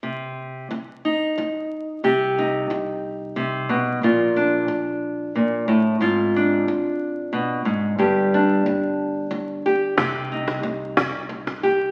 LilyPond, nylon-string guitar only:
\new Staff \with { instrumentName = "Nylon-string guitar" } { \time 3/4 \key c \minor \tempo 4 = 91 << { r4. ees'4. | g'8 ees'2~ ees'8 | f'8 d'2~ d'8 | f'8 d'2~ d'8 |
g'8 d'2 g'8 | g'8 ees'2 g'8 | } \\ { c4 r2 | c4 r4 c8 b,8 | bes,4 r4 bes,8 a,8 | aes,4 r4 b,8 aes,8 |
g,4 r2 | c4 r2 | } >> }